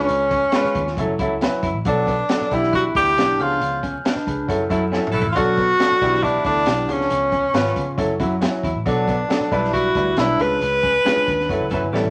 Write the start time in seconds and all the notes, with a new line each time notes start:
Already playing: G#3 C#4 F4 B4 C#6
0.08 C#2, closed hi-hat
0.31 C#4, kick, closed hi-hat
0.52 G#3 C#4 F4 B4, snare, closed hi-hat
0.64 muted picked electric bass stroke, snare
0.75 D#2, kick, closed hi-hat
0.87 snare
0.97 F#1 F#3 C#4 E4 A4, kick, closed hi-hat
1.19 C#2 F#3 C#4 E4 A4, kick, closed hi-hat
1.41 F#3 C#4 E4 B4, snare, closed hi-hat
1.63 F#1 E4, kick, closed hi-hat
1.74 A1
1.85 B1 F#3 B3 D4 A4 D6, kick, closed hi-hat
2.07 B3, kick, closed hi-hat
2.29 F#3 B3 D4 A4, snare, closed hi-hat
2.41 muted picked electric bass stroke, snare
2.51 B1 E3 B3 D4 E4 G4 E6, kick, closed hi-hat
2.63 snare
2.73 E4 F#4 F#6, kick, closed hi-hat
2.95 D2 E3 B3 D4 G4 G6, kick, closed hi-hat
3.17 B1 E3 B3 D4 G4, snare, closed hi-hat
3.39 C#2 F3 B3 C#4 F4 G#4 F6, open hi-hat
3.61 C#2, closed hi-hat
3.83 C#4, kick, closed hi-hat
4.05 D4 B4 D#5, snare, closed hi-hat
4.16 muted picked electric bass stroke, snare
4.27 C#2 G#4 B4, kick, closed hi-hat
4.48 F#1 F#3 C#4 E4 A4, kick, closed hi-hat
4.70 F#2 F#3 A3 C#4 E4 A4, kick, closed hi-hat
4.91 F#3 A3 C#4 E4 A4, snare
5.07 mid tom
5.12 B1 E4 F#4 A4
5.22 A1, floor tom
5.29 F4 F6
5.35 B1 F#3 B3 D4 F#4 A4 F#6, kick, closed hi-hat
5.58 B3, kick, closed hi-hat
5.79 F#3 B3 D4 A4, snare, closed hi-hat
5.91 muted picked electric bass stroke, snare
6.01 B1 E3 B3 D4 E4 G4, kick, closed hi-hat
6.14 snare
6.23 D4 E4 D6, kick, closed hi-hat
6.44 D2 E3 B3 D4 A4 D6, kick, closed hi-hat
6.66 B1 E3 B3 D4 G4, snare, closed hi-hat
6.88 C#2 F3 B3 C#4 G#4 C#6, closed hi-hat
7.01 snare
7.10 C#2, closed hi-hat
7.32 C#4, kick, closed hi-hat
7.53 G#1 F3 B3 C#4 F4 B4, snare, closed hi-hat
7.66 snare
7.76 C#3, kick, closed hi-hat
7.97 F#1 F#3 C#4 E4 A4, kick, closed hi-hat
8.19 F#2 F#3 C#4 E4 F#4, kick, closed hi-hat
8.41 F#3 C#4 E4 F#4, snare, closed hi-hat
8.63 E2 E4, kick, closed hi-hat
8.75 A1
8.86 B1 F#3 B3 D4 A4 D6, kick, closed hi-hat
9.08 B3, kick, closed hi-hat
9.28 F#3 B3 D4 A4, snare, closed hi-hat
9.40 muted picked electric bass stroke, snare
9.52 B1 G3 D4 E4 B4, kick, closed hi-hat
9.64 snare
9.73 E4 F#4 F#6, kick, closed hi-hat
9.95 D2 G3 D4 E4 B4, kick, closed hi-hat
10.17 B1 G3 D4 E4 B4 E6, snare, closed hi-hat
10.38 C#2 G#3 C#4 F4 B4 B6, closed hi-hat
10.61 C#2, closed hi-hat
10.83 C#4, kick, closed hi-hat
11.04 G#3 C#4 D4 F4 G#4, snare, closed hi-hat
11.16 muted picked electric bass stroke
11.28 D#2, kick, closed hi-hat
11.40 snare
11.49 F#1 F#3 C#4 E4 A4, kick, closed hi-hat
11.60 C#2
11.70 F#1 F#3 C#4 E4 F#4 A4, kick, closed hi-hat
11.74 E4 B4
11.81 G1
11.93 A1 G3 B3 C#4 E4 G4 A4, snare
12.04 A1